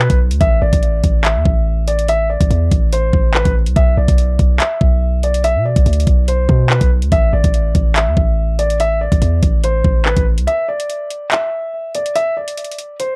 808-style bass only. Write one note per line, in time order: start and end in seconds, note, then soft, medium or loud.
0.10 0.32 B1 loud
0.31 0.40 D2 loud
0.41 0.61 A1 loud
0.62 0.72 A1 loud
0.73 1.02 A1 loud
1.04 1.37 A1 loud
1.36 1.45 E2 loud
1.45 2.37 A1 loud
2.41 2.50 A1 loud
2.50 2.71 E2 loud
2.72 3.12 A1 loud
3.13 3.44 A1 loud
3.46 3.68 A1 loud
3.66 3.76 C2 loud
3.76 3.96 B1 loud
3.97 4.08 B1 loud
4.08 4.38 B1 loud
4.39 4.59 B1 loud
4.81 5.57 B1 loud
5.55 5.75 B2 loud
5.76 5.85 B1 loud
5.86 6.06 D2 loud
6.07 6.47 B1 loud
6.49 6.80 B2 loud
6.81 7.04 B1 loud
7.02 7.11 D2 loud
7.12 7.32 A1 loud
7.33 7.43 A1 loud
7.44 7.74 A1 loud
7.75 8.08 A1 loud
8.07 8.16 E2 loud
8.17 9.08 A1 loud
9.12 9.21 A1 loud
9.22 9.42 E2 loud
9.43 9.83 A1 loud
9.85 10.15 A1 loud
10.17 10.39 A1 loud
10.38 10.47 C2 loud